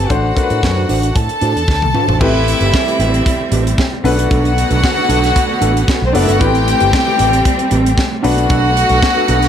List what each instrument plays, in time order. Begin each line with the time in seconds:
Already playing: grand piano A3 C4 G4 B4, clean electric guitar B4
0.00 clean electric guitar C4 G4
0.09 picked electric bass A1, grand piano A3 D4 F#4 C5, clean electric guitar D4 F#4 C5, violin section F#4 F#5, kick, closed hi-hat
0.25 muted clean electric guitar stroke
0.36 grand piano A3 D4 F#4 A#4, muted clean electric guitar stroke, kick, closed hi-hat
0.43 grand piano B4
0.50 picked electric bass A2, clean electric guitar D4 F#4 C5, closed hi-hat
0.63 picked electric bass F#2, kick, snare
0.76 clean electric guitar D4 F#4 C5
0.89 picked electric bass A1, clean electric guitar D4 F#4 C5, open hi-hat
1.03 muted clean electric guitar stroke, closed hi-hat
1.15 picked electric bass A2, violin section A4 A5, muted clean electric guitar stroke, kick, closed hi-hat
1.29 muted clean electric guitar stroke, closed hi-hat
1.41 picked electric bass A2, clean electric guitar D4 F#4 C5, closed hi-hat
1.55 picked electric bass E2, muted clean electric guitar stroke, closed hi-hat
1.68 picked electric bass D2, muted clean electric guitar stroke, kick, snare
1.82 picked electric bass C2, muted clean electric guitar stroke, high tom
1.94 clean electric guitar D4 F#4 C5, mid tom
2.08 picked electric bass A1, clean electric guitar D4 F#4 C5, floor tom
2.20 picked electric bass A1, string section G3 A3 C4, grand piano A3 C4 E4 G4 B4, clean electric guitar C4 G4 B4, violin section E4 E5, kick, crash
2.34 muted clean electric guitar stroke
2.47 muted clean electric guitar stroke, closed hi-hat
2.61 picked electric bass G1, clean electric guitar C4 G4 B4, closed hi-hat
2.74 muted clean electric guitar stroke, kick, snare
2.88 clean electric guitar C4 G4 B4, closed hi-hat
2.99 picked electric bass A1, clean electric guitar C4 G4 B4, closed hi-hat
3.14 muted clean electric guitar stroke, closed hi-hat
3.26 muted clean electric guitar stroke, kick, closed hi-hat
3.40 muted clean electric guitar stroke
3.52 picked electric bass A1, clean electric guitar C4 G4 B4, closed hi-hat
3.66 muted clean electric guitar stroke, closed hi-hat
3.78 muted clean electric guitar stroke, kick, snare
3.92 muted clean electric guitar stroke
4.04 picked electric bass B1, string section D3 A3 B3, grand piano A3 B3 C#4 F#4 B4, clean electric guitar D4 A4 B4, violin section F#4 F#5, open hi-hat
4.11 grand piano D4
4.18 clean electric guitar D4 A4 B4, closed hi-hat
4.30 picked electric bass B1, clean electric guitar D4 A4 B4, kick, closed hi-hat
4.45 muted clean electric guitar stroke, closed hi-hat
4.57 muted clean electric guitar stroke, closed hi-hat
4.70 picked electric bass B1, clean electric guitar D4 A4 B4, closed hi-hat
4.83 muted clean electric guitar stroke, kick, snare
4.97 clean electric guitar D4 A4 B4
5.09 picked electric bass B1, clean electric guitar D4 A4 B4, closed hi-hat
5.23 muted clean electric guitar stroke, snare, closed hi-hat
5.36 kick, closed hi-hat
5.49 muted clean electric guitar stroke
5.61 picked electric bass A1, clean electric guitar D4 A4 B4, closed hi-hat
5.75 muted clean electric guitar stroke, closed hi-hat
5.88 muted clean electric guitar stroke, kick, snare
6.01 picked electric bass B1, muted clean electric guitar stroke
6.06 violin section C4 C5
6.13 picked electric bass F#1, grand piano A3 B3 D4 F#4 B4, clean electric guitar D4 A4 B4, violin section D4 D5, open hi-hat
6.23 violin section E4 E5
6.27 picked electric bass G1, clean electric guitar D4 A4 B4, violin section F#5, closed hi-hat
6.31 violin section F#4
6.39 picked electric bass A1, string section G3 C4, grand piano A3 B3 E4 G4 B4, clean electric guitar C4 G4 B4, violin section G4 G5, kick, closed hi-hat
6.46 grand piano C4
6.54 muted clean electric guitar stroke, closed hi-hat
6.66 muted clean electric guitar stroke, closed hi-hat
6.80 picked electric bass G1, clean electric guitar C4 G4 B4, closed hi-hat
6.93 muted clean electric guitar stroke, kick, snare
7.06 clean electric guitar C4 G4 B4
7.18 picked electric bass A1, clean electric guitar C4 G4 B4, closed hi-hat
7.33 muted clean electric guitar stroke, closed hi-hat
7.45 muted clean electric guitar stroke, kick, closed hi-hat
7.59 muted clean electric guitar stroke, closed hi-hat
7.71 picked electric bass A1, clean electric guitar C4 G4 B4, closed hi-hat
7.85 muted clean electric guitar stroke, closed hi-hat
7.97 muted clean electric guitar stroke, kick, snare
8.11 muted clean electric guitar stroke
8.23 picked electric bass B1, string section D3 B3, grand piano A3 B3 D4 F#4 B4, clean electric guitar D4 A4 B4, violin section F#4 F#5, open hi-hat
8.37 clean electric guitar D4 A4 B4, closed hi-hat
8.49 picked electric bass B1, clean electric guitar D4 A4 B4, kick, closed hi-hat
8.63 muted clean electric guitar stroke
8.76 muted clean electric guitar stroke, closed hi-hat
8.89 picked electric bass B1, clean electric guitar D4 A4 B4, closed hi-hat
9.02 muted clean electric guitar stroke, kick, snare
9.16 clean electric guitar D4 A4 B4
9.28 picked electric bass B1, clean electric guitar D4 A4 B4, closed hi-hat
9.42 muted clean electric guitar stroke, snare, closed hi-hat